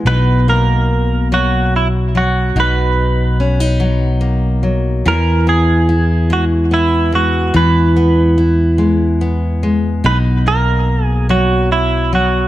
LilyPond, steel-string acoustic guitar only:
\new Staff \with { instrumentName = "Steel-string acoustic guitar" } { \time 6/8 \key b \major \tempo 4. = 48 <b, dis'>8 ais4 fis4 fis8 | <b, dis'>4 cis'16 dis'16 fis8 ais8 fis8 | <e e'>8 b8 e'8 gis8 b8 gis8 | <e e'>8 b8 e'8 gis8 b8 gis8 |
<b, dis'>8 ais4 fis4 fis8 | }